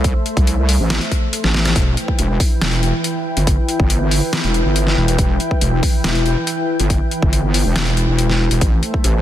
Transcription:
0.00 0.14 C2 loud
0.00 1.72 A3 medium
0.00 1.72 A4 medium
0.00 1.72 C5 medium
0.00 1.72 E5 loud
0.04 kick loud
0.04 closed hi-hat medium
0.26 closed hi-hat medium
0.37 0.78 C2 loud
0.37 kick loud
0.37 closed hi-hat soft
0.47 closed hi-hat medium
0.69 open hi-hat loud
0.80 0.99 A1 medium
0.90 snare loud
0.90 closed hi-hat medium
1.01 closed hi-hat soft
1.11 kick medium
1.11 closed hi-hat medium
1.33 closed hi-hat medium
1.44 1.74 A1 loud
1.44 snare medium
1.54 snare medium
1.65 snare medium
1.65 closed hi-hat medium
1.76 1.96 E1 medium
1.76 8.57 E3 medium
1.76 8.57 E4 medium
1.76 8.57 B4 medium
1.76 8.58 G5 medium
1.76 kick loud
1.76 closed hi-hat medium
1.97 closed hi-hat medium
2.08 kick medium
2.19 2.38 E1 loud
2.19 closed hi-hat medium
2.40 kick loud
2.40 open hi-hat loud
2.61 2.92 E1 loud
2.61 snare loud
2.61 closed hi-hat medium
2.73 closed hi-hat soft
2.83 closed hi-hat medium
3.04 closed hi-hat medium
3.37 3.56 G1 loud
3.37 closed hi-hat medium
3.47 kick loud
3.47 closed hi-hat medium
3.69 closed hi-hat medium
3.80 4.21 G1 loud
3.80 kick loud
3.90 closed hi-hat medium
4.11 open hi-hat loud
4.33 snare loud
4.33 closed hi-hat medium
4.44 4.64 E1 medium
4.44 closed hi-hat soft
4.54 closed hi-hat medium
4.65 4.96 G1 loud
4.76 closed hi-hat medium
4.87 snare soft
4.97 5.17 E1 loud
5.08 closed hi-hat medium
5.19 5.38 E1 loud
5.19 kick loud
5.19 closed hi-hat medium
5.40 closed hi-hat medium
5.51 kick medium
5.61 5.81 E1 loud
5.61 closed hi-hat medium
5.83 kick loud
5.83 open hi-hat medium
6.04 6.35 E1 loud
6.04 snare loud
6.04 closed hi-hat medium
6.15 closed hi-hat soft
6.26 closed hi-hat medium
6.47 closed hi-hat medium
6.80 6.99 G1 loud
6.80 closed hi-hat medium
6.90 kick loud
6.90 closed hi-hat medium
7.11 closed hi-hat medium
7.22 7.64 G1 loud
7.22 kick loud
7.33 closed hi-hat medium
7.54 open hi-hat medium
7.65 8.06 E1 loud
7.76 snare loud
7.76 closed hi-hat medium
7.87 closed hi-hat soft
7.97 closed hi-hat medium
8.08 8.49 E1 loud
8.19 closed hi-hat medium
8.30 snare soft
8.51 8.60 E1 loud
8.51 closed hi-hat medium
8.61 8.81 A1 medium
8.61 9.22 A3 medium
8.61 9.22 A4 medium
8.61 9.22 C5 medium
8.61 9.22 E5 medium
8.61 kick loud
8.61 closed hi-hat medium
8.83 closed hi-hat medium
8.94 kick medium
9.04 9.22 A1 medium
9.04 closed hi-hat medium

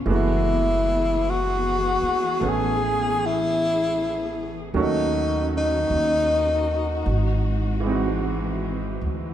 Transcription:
0.00 4.68 E3 medium
0.00 4.68 B3 medium
0.00 4.68 G#4 medium
0.06 1.98 F#1 medium
0.06 4.73 E3 soft
0.06 4.74 G#3 soft
0.06 2.38 A3 soft
0.06 2.40 B3 soft
0.10 4.75 F#4 medium
0.15 1.31 E4 medium
1.29 2.50 F#4 medium
2.02 muted upright bass stroke soft
2.40 4.70 A1 medium
2.40 4.73 A3 soft
2.40 4.74 B3 soft
2.40 4.74 C#4 soft
2.40 4.75 G#4 soft
2.49 3.27 G#4 medium
3.26 4.59 E4 medium
4.74 5.86 D#2 medium
4.74 7.06 D#3 soft
4.74 7.05 D#3 medium
4.74 7.06 F#3 soft
4.74 7.07 A3 soft
4.74 7.07 C#4 soft
4.74 7.05 C#4 medium
4.74 7.07 F#4 medium
4.74 9.34 F#4 medium
4.79 5.51 D#4 medium
5.57 7.83 D#4 medium
5.90 7.02 D#2 medium
7.05 8.97 G#1 medium
7.05 9.34 E3 medium
7.05 9.34 G#3 medium
7.05 9.34 C4 medium
7.80 9.34 E3 soft
7.80 9.34 G#3 soft
7.86 9.34 C4 soft
7.86 9.34 D#4 soft
7.92 9.34 F#4 soft
9.01 9.34 D2 medium

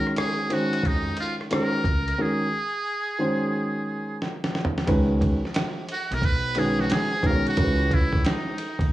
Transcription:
0.00 0.48 D#3 medium
0.00 0.48 G#3 medium
0.00 0.49 C#4 medium
0.00 0.49 F#4 medium
0.00 0.13 A#4 loud
0.00 0.79 A#4 medium
0.07 cross-stick soft
0.16 0.54 G#4 medium
0.16 cross-stick loud
0.16 hi-hat pedal soft
0.16 ride medium
0.50 1.46 D#3 medium
0.50 1.46 G#3 medium
0.50 1.46 C#4 medium
0.50 1.46 F#4 medium
0.50 0.88 F#4 medium
0.50 1.46 C5 medium
0.50 ride medium
0.73 ride soft
0.83 1.09 F2 medium
0.83 1.18 D#4 medium
0.83 kick medium
0.83 ride medium
1.16 1.35 F4 medium
1.16 ride medium
1.41 cross-stick soft
1.51 1.77 D#3 medium
1.51 1.77 G#3 medium
1.51 1.78 C#4 medium
1.51 1.78 F#4 medium
1.51 2.23 A#4 medium
1.51 1.78 C5 medium
1.51 cross-stick loud
1.51 hi-hat pedal medium
1.51 ride medium
1.84 2.10 C#2 medium
1.84 kick medium
1.84 ride soft
2.08 ride soft
2.18 2.45 D#3 medium
2.18 2.45 G#3 medium
2.18 2.45 C#4 medium
2.18 2.45 F#4 medium
2.18 4.22 G#4 medium
2.18 2.45 A#4 medium
3.18 4.15 D#3 medium
3.18 4.15 G#3 medium
3.18 4.16 C#4 medium
3.18 4.16 F#4 medium
3.18 4.16 C5 medium
4.22 snare medium
4.44 snare medium
4.55 snare medium
4.65 floor tom medium
4.78 snare medium
4.87 5.31 C#2 loud
4.87 5.38 D#3 medium
4.87 5.39 G#3 medium
4.87 5.39 C#4 medium
4.87 5.39 F#4 medium
4.87 5.39 B4 medium
4.87 kick loud
4.87 ride medium
5.21 kick medium
5.21 ride medium
5.45 snare soft
5.54 snare loud
5.54 hi-hat pedal medium
5.54 ride medium
5.89 6.15 F#4 medium
5.89 ride medium
6.11 6.86 B1 medium
6.11 6.27 A#4 loud
6.11 ride soft
6.22 6.60 B4 loud
6.22 kick medium
6.22 ride medium
6.55 7.07 D#3 medium
6.55 7.07 G#3 medium
6.55 7.07 C#4 medium
6.55 7.07 F#4 medium
6.55 6.82 G#4 medium
6.55 7.08 B4 medium
6.55 ride medium
6.79 6.93 F#4 medium
6.79 snare soft
6.90 7.28 G#4 medium
6.90 snare loud
6.90 hi-hat pedal medium
6.90 ride medium
7.23 7.40 B1 medium
7.23 7.74 D#3 medium
7.23 7.55 G#3 medium
7.23 7.55 C#4 medium
7.23 7.55 F#4 medium
7.23 7.47 A#4 loud
7.23 7.32 B4 medium
7.23 kick loud
7.23 ride soft
7.30 7.78 C#5 medium
7.46 7.95 F#4 medium
7.46 ride soft
7.56 8.00 C#2 medium
7.56 8.53 E3 medium
7.56 8.53 G#3 medium
7.56 8.53 C#4 medium
7.56 8.53 F#4 medium
7.56 7.66 A#4 medium
7.56 kick loud
7.56 ride medium
7.64 8.57 B4 medium
7.91 8.28 E4 medium
7.91 kick medium
7.91 ride medium
8.13 kick medium
8.13 snare soft
8.24 8.93 D#4 medium
8.24 snare loud
8.24 hi-hat pedal medium
8.24 ride medium
8.58 ride medium
8.79 8.93 D#2 medium
8.79 kick medium
8.79 ride medium

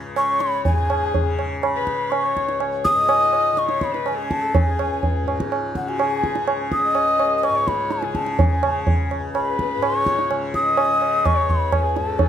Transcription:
0.00 2.38 C#2 medium
0.00 0.64 G#2 medium
0.00 1.22 C#3 medium
0.16 0.42 C#6 medium
0.16 tabla na medium
0.28 0.73 C#5 medium
0.40 0.64 B5 medium
0.40 tabla te medium
0.65 2.94 G#2 medium
0.65 1.34 G#5 medium
0.65 tabla tin medium
0.65 tabla ge medium
0.77 1.46 G#4 medium
0.90 tabla na medium
1.14 tabla tin medium
1.14 tabla ge medium
1.22 1.80 C#3 medium
1.39 tabla na medium
1.63 2.12 B5 medium
1.63 tabla na medium
1.76 2.26 B4 medium
1.80 3.53 C#3 medium
1.87 tabla ke medium
2.10 2.59 C#6 loud
2.10 tabla na medium
2.24 2.73 C#5 medium
2.37 4.66 C#2 medium
2.37 tabla ke medium
2.49 tabla te medium
2.60 tabla na medium
2.84 3.60 D#6 loud
2.84 tabla ke medium
2.94 5.23 G#2 medium
2.94 3.66 D#5 medium
3.09 tabla na medium
3.33 tabla na medium
3.53 4.11 C#3 medium
3.57 3.85 C#6 loud
3.57 tabla te medium
3.69 3.95 C#5 medium
3.69 tabla te medium
3.81 4.09 B5 medium
3.81 tabla ke medium
3.93 4.19 B4 medium
3.93 tabla te medium
4.06 4.33 G#5 medium
4.06 tabla na medium
4.11 5.80 C#3 medium
4.17 4.43 G#4 medium
4.31 4.57 A5 medium
4.31 tabla ke medium
4.41 4.66 A4 medium
4.55 5.27 G#5 medium
4.55 tabla tin loud
4.55 tabla ge medium
4.66 6.93 C#2 medium
4.66 5.35 G#4 medium
4.79 tabla na medium
5.03 tabla tin medium
5.03 tabla ge medium
5.23 7.49 G#2 medium
5.28 tabla na medium
5.40 tabla ke medium
5.52 tabla na medium
5.75 5.90 F#5 medium
5.75 tabla ke medium
5.80 6.36 C#3 medium
5.87 6.01 F#4 medium
5.87 6.60 G#5 medium
5.99 6.71 G#4 medium
5.99 tabla na medium
6.24 tabla ke medium
6.35 8.05 C#3 medium
6.35 tabla te medium
6.48 tabla na medium
6.72 7.38 D#6 loud
6.72 tabla ke medium
6.83 7.57 D#5 medium
6.93 9.19 C#2 medium
6.93 tabla na medium
7.20 tabla na medium
7.38 7.46 D#6 medium
7.43 7.69 C#6 medium
7.43 tabla na medium
7.49 9.76 G#2 medium
7.56 8.04 C#5 medium
7.68 7.93 B5 medium
7.68 tabla ke medium
7.91 8.17 G#5 medium
7.91 tabla te medium
8.02 8.62 C#3 soft
8.02 8.49 G#4 medium
8.02 tabla te medium
8.15 8.42 A5 medium
8.15 tabla ke medium
8.26 tabla te medium
8.39 9.11 G#5 medium
8.39 tabla tin loud
8.39 tabla ge medium
8.50 9.18 G#4 soft
8.62 10.31 C#3 medium
8.62 tabla na medium
8.87 tabla tin medium
8.87 tabla ge medium
9.11 tabla na medium
9.19 11.42 C#2 medium
9.34 9.84 B5 medium
9.34 tabla na medium
9.46 9.96 B4 medium
9.59 tabla ke medium
9.76 11.97 G#2 medium
9.82 10.30 C#6 loud
9.82 tabla na medium
9.94 10.42 C#5 medium
10.06 tabla ke medium
10.19 tabla te medium
10.31 10.86 C#3 medium
10.31 tabla na medium
10.54 11.27 D#6 loud
10.54 tabla ke medium
10.65 11.38 D#5 medium
10.77 tabla na medium
10.86 12.29 C#3 medium
11.02 tabla na medium
11.26 11.51 C#6 medium
11.26 tabla na medium
11.26 tabla ge medium
11.36 11.85 C#5 medium
11.42 12.29 C#2 medium
11.50 11.74 B5 medium
11.50 tabla ge medium
11.72 11.98 G#5 medium
11.72 tabla na medium
11.72 tabla ge medium
11.84 12.09 G#4 medium
11.96 12.29 G#2 medium
11.96 12.20 A5 medium
11.96 tabla te medium
12.07 12.29 A4 medium
12.19 12.29 G#5 medium
12.19 tabla tin loud
12.19 tabla ge medium

